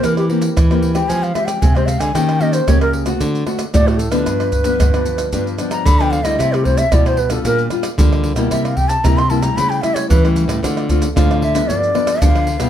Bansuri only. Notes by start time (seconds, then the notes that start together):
0.04 A#4
0.17 G4
0.94 G5
1.09 G#5
1.23 F5
1.34 E5
1.46 G5
1.62 G#5
1.76 C5
1.86 F5
2.00 G#5
2.15 G5
2.41 D#5
2.53 C5
2.68 C#5
2.82 A#4
3.74 D5
3.88 F#4
3.97 A4
4.11 B4
5.71 A#5
5.86 B5
6.00 G5
6.11 F5
6.24 D#5
6.39 E5
6.53 G4
6.64 C5
6.78 E5
6.93 D5
7.07 C5
7.18 B4
7.32 A4
7.46 A#4
8.51 E5
8.65 F5
8.77 G5
8.88 A5
9.04 A#5
9.18 C6
9.30 A5
9.42 A#5
9.57 B5
9.70 G5
9.82 E5
9.94 C#5
10.09 B4
11.16 F5
11.40 E5 F5
11.68 D5
12.21 F5